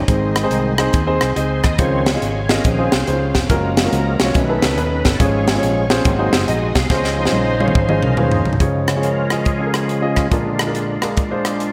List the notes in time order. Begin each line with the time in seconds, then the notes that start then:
Already playing: D#4 D#5
0.08 G#1 G#2 D#3 G#3 C4 D#4 G#4 C5 G#5 C6, kick, closed hi-hat
0.36 cross-stick, closed hi-hat
0.43 C4 D#4 G#4 C5
0.51 C2, closed hi-hat
0.78 C4 D#4 G#4 C5, cross-stick, closed hi-hat
0.93 D#2, kick, closed hi-hat
1.07 C4 D#4 G#4 C5
1.21 C2, cross-stick, closed hi-hat
1.36 C#2 C4 D#4 G#4 C5 D#5, closed hi-hat
1.63 D#2 D#5, kick, cross-stick, closed hi-hat
1.78 C#2 C#3 D#3 F3 C4 C#4 F4 G#4 C5 C#5 F5, kick, closed hi-hat
2.06 snare, closed hi-hat
2.14 C#4 F4 G#4 D#5
2.21 G#1, closed hi-hat
2.49 C#4 F4 G#4 A#4 D#5, snare, closed hi-hat
2.64 A#1 D#3 F3 C4 G#4, kick, closed hi-hat
2.78 C#4 F4 G#4 C5
2.92 C2 C5, snare, closed hi-hat
3.07 C#2 C#4 D#4 G#4 C5, closed hi-hat
3.13 F4
3.34 F1, kick, snare, closed hi-hat
3.49 F#1 F3 G#3 A#3 C#4 F4 F#4 A#4 F#5 A#5, kick, closed hi-hat
3.77 snare, closed hi-hat
3.85 C#4 F4 F#4 A#4
3.93 C#2 A#4, closed hi-hat
4.20 C2 C#4 F4 F#4 C#5, snare, closed hi-hat
4.34 B1 B2 D#3 A3 C#4 B4 D#5 A5 B5, kick, closed hi-hat
4.49 C#4 D#4 A4 B4
4.62 C#2, snare, closed hi-hat
4.77 D#2 C#4 D#4 A4 B4, closed hi-hat
5.05 G1 A4, kick, snare, closed hi-hat
5.20 G#1 G#2 F3 G#3 C#4 F4 G#4 C#5 F5 G#5 C#6, kick, closed hi-hat
5.47 C#5, snare, closed hi-hat
5.54 C#4 F4 G#4 C#5
5.63 A#1, closed hi-hat
5.90 C#4 F4 G#4 C5, snare, closed hi-hat
6.05 G#1 G#2 F#3 A#3 C4 D#5 F#5 C6, kick, closed hi-hat
6.19 D#4 F#4 G#4 C5
6.33 F#1, snare, closed hi-hat
6.47 A#1 D#4 F#4 G#4 D#5, closed hi-hat
6.75 C2 F5, kick, snare, closed hi-hat
6.90 C#2 C#3 C#4 F4 G#4 C5 D#5 F5, kick, snare
7.04 snare
7.18 F3 D#4 C5
7.25 C#4 F4 G#4 C5, snare
7.32 A#1, high tom
7.60 C#4 F4 G#4 C5 C#5, high tom
7.68 mid tom
7.75 G#1 C5, kick
7.89 C#4 F4 G#4 D#5, mid tom
8.02 C2 A#4, mid tom
8.17 D#2 C#4 F4 G#4 B4, mid tom
8.23 C5
8.31 floor tom
8.45 C2, floor tom
8.53 floor tom
8.60 C#2 C#3 F3 G#3 C#4 F4 G#4 C#5, kick, closed hi-hat
8.88 cross-stick, closed hi-hat
8.96 C#4 F4 G#4 C#5
9.02 C#4 F4 A#4, closed hi-hat
9.30 C#4 F4 G#4 D#5, cross-stick, closed hi-hat
9.45 C#4 F4 G#4, kick, closed hi-hat
9.60 C#4 F4 G#4 A4
9.66 A#4
9.74 cross-stick, closed hi-hat
9.89 closed hi-hat
10.02 C#4 F4 G#4 D#5
10.16 kick, cross-stick, closed hi-hat
10.31 A#1 A#2 D3 G#3 D4 F4 G#4 A#4, kick, closed hi-hat
10.59 cross-stick, closed hi-hat
10.66 D4 F4 G#4 A#4
10.74 G#3 D4 F4, closed hi-hat
11.02 D4 F4 G#4 A#4, cross-stick, closed hi-hat
11.17 kick, closed hi-hat
11.31 D4 F4 G#4 C5
11.45 cross-stick, closed hi-hat
11.60 closed hi-hat